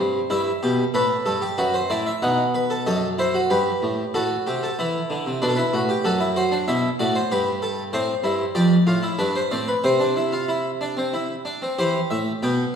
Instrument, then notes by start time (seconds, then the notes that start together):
harpsichord
Already playing: C4 C5
0.00 G2
0.30 G2 E4 E5
0.63 B2 G4
0.94 A2 A4 B4
1.26 G2 A4
1.42 G4
1.58 F#2 F#4 B4
1.74 C5
1.90 A2 E4 D5
2.06 E5
2.22 B2 D#4 F#5
2.55 B4
2.70 A4
2.87 F#2 A4 D#5
3.18 E4 C5
3.34 F#4
3.50 G2 G4 B4
3.82 A2
4.14 A2 F#4 A4
4.47 C3 G4
4.63 A4
4.79 E3 E4
5.10 D3
5.26 C3
5.42 B2 D4 B4
5.48 A4
5.55 E4 B4
5.73 A2 F#4
5.89 G4
6.04 F#2 F#4 A4
6.20 E4
6.36 F#4 C5
6.51 D4
6.68 B2 E4 E5
6.99 A2 F#4 D5
7.15 C5
7.31 G2 G4 B4
7.62 A4
7.93 A2 C4 C5
8.24 G2 E4
8.55 F2 G4 D5
8.87 A2 F4
9.03 E4
9.19 G2 D4 B4
9.35 C5
9.51 A2 C4 D5
9.68 B4
9.84 C3 C4 C5
10.00 D4
10.16 E4
10.32 F4
10.48 E4
10.81 D4
10.97 C4
11.13 E4
11.45 D4
11.62 C4
11.79 E3 G4 C5
12.10 A2 E5
12.43 B2 B3 G5